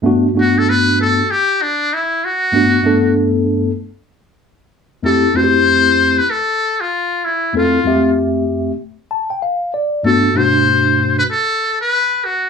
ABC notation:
X:1
M:4/4
L:1/16
Q:"Swing 16ths" 1/4=96
K:G
V:1 name="Muted trumpet"
z2 F A B2 A2 G2 D2 E2 F2- | F4 z12 | A2 c4- c B A3 =F3 E2 | =F4 z12 |
A2 c4- c B A3 B3 F2 |]
V:2 name="Tine electric piano"
[G,,A,B,DF]2 [G,,A,B,DF]6 z8 | [G,,A,B,DF]2 [G,,A,B,DA]6 z8 | [=F,,A,CEG]2 [F,,A,CE^FG]6 z8 | [=F,,A,CEA]2 [F,,_A,=A,CGe]6 z2 a g =f2 d2 |
[G,,A,B,DF]2 [G,,B,,A,DF]6 z8 |]